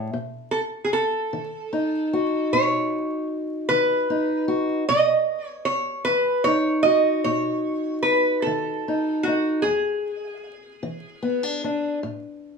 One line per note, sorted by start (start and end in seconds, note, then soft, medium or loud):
0.00 0.12 A2 medium
0.13 0.84 B2 medium
0.51 0.60 A4 medium
0.84 0.91 G#4 medium
0.93 2.56 A4 medium
1.33 2.03 D#3 medium
1.73 4.09 D#4 medium
2.13 4.47 F#4 medium
2.53 3.23 B2 medium
2.53 3.27 C#5 medium
3.69 4.41 D#3 medium
3.69 4.44 B4 loud
4.10 4.84 D#4 medium
4.48 4.83 F#4 medium
4.89 5.60 B2 medium
4.89 5.48 D#5 loud
5.48 5.65 C#5 loud
5.65 6.07 C#5 medium
6.05 6.79 D#3 medium
6.05 6.47 B4 medium
6.44 8.85 D#4 medium
6.44 6.82 C#5 loud
6.83 9.59 F#4 medium
6.83 7.21 D#5 loud
7.24 7.97 B2 medium
7.24 8.02 C#5 medium
8.02 8.45 B4 medium
8.42 9.26 A4 medium
8.47 9.17 D#3 medium
8.88 9.26 D#4 medium
9.23 9.62 F#4 medium
9.27 9.61 D#4 medium
9.62 10.36 E2 medium
9.62 11.97 G#4 medium
10.83 11.55 E3 medium
11.22 11.43 B3 medium
11.43 11.63 D4 soft
11.64 11.99 D4 medium
12.03 12.58 A2 medium